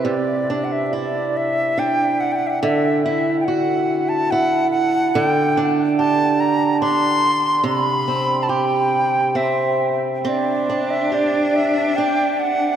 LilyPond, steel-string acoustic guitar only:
\new Staff \with { instrumentName = "Steel-string acoustic guitar" } { \time 3/4 \key c \lydian \tempo 4 = 71 c8 d'8 e'4 d'4 | d8 e'8 fis'4 e'4 | d8 d'8 g'4 d'4 | c8 c'8 g'4 c'4 |
c'8 d'8 g'4 d'4 | }